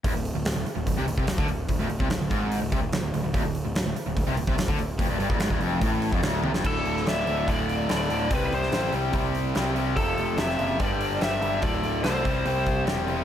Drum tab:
CC |----------------|----------------|----------------|----------------|
HH |o-o-o-o-o-o-o-o-|o-o-o-o-o-o-o-o-|o-o-o-o-o-o-o-o-|o-o-o-o-o-o-o---|
SD |----o-------o---|----o-------o---|----o-------o---|----o-------o--o|
T1 |----------------|----------------|----------------|--------------o-|
BD |o-------o--o-o--|o--o--o---o-----|o-------o--o-o--|o--o-o--o--o----|

CC |x---------------|----------------|----------------|----------------|
HH |--o-o-o-o-o-o-o-|o-o-o-o-o-o-o-o-|o-o-o-o-o-o-o-o-|o-o-o-o-o-o-o-o-|
SD |---oo-------o---|---oo-------o---|----oo------o---|----o-------o---|
T1 |----------------|----------------|----------------|----------------|
BD |o-------o-------|o-------o-------|o-------o-------|o-----o---o-----|